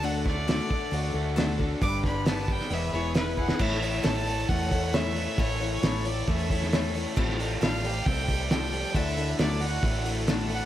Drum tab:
CC |----------------|----------------|x---------------|----------------|
HH |o---o---o---o---|o---o---o---o---|--o-o-o-o-o-o-o-|o-o-o-o-o-o-o-o-|
SD |--o-o-------o---|--o-o--o----o--o|-o--o-------o---|----o------oo---|
BD |--o---o-------o-|o-o---o-------o-|o-------o-o-----|o-------o-o-----|

CC |x---------------|----------------|
HH |--o-o-o-o-o-o-o-|o-o-o-o-o-o-o-o-|
SD |-o--o-------o---|----o-------o---|
BD |o-------o-o-----|o-------o-------|